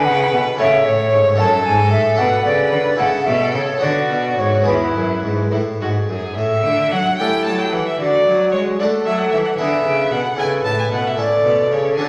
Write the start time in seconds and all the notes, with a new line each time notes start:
Already playing: B3 E4 B4
0.05 C#3 F#5
0.33 B2
0.55 C#4 E4 A4
0.60 C#3 C#5 E5
0.86 A2 C#5
1.12 G#2
1.34 C#4 F#4 A4
1.38 F#2 A4 A5
1.66 G#2 G#5
1.92 A2 E5
2.15 D4 F#4 A4 F#5
2.19 B2 B4
2.45 C#3 D5
2.72 D3
2.95 C#4 E4 A4
2.99 C#3 A4 F#5
3.26 B2 E5
3.53 C#3 C#5
3.77 D3 B3 F#4 B4 D5
3.82 D3 F#4
4.09 B2
4.37 G#2 C#5
4.62 B3 G#4 B4
4.66 E2 E4 B4
4.95 F#2
5.23 G#2
5.51 A2 E4
5.80 G#2 F#4
6.08 F#2 G#4
6.36 A2 E5
6.64 D3
6.91 F#3 F#5
7.18 A3 C#4 E4 G4 A4 G5
7.45 F#3 A5
7.58 G5
7.72 E3 F#5
7.87 E5
7.98 D3 F#4 D5
8.26 F#3
8.52 G#3 C#5
8.79 A3 D4 F#4 A4 D5
9.05 F#3 E5
9.18 F#5
9.31 E3 E5
9.45 F#5
9.57 D3 B3 E4 G#4 B4 E5
9.84 C#3
10.10 B2 F#5
10.36 C#3 C#4 E4 A4 B4 G#5
10.64 A2 A5
10.80 G#5
10.91 B2 F#5
11.07 E5
11.16 A2 C#4 E4 A4 D5
11.44 B2
11.70 C#3 C#5
11.96 D3 D4 F#4 A4 G#5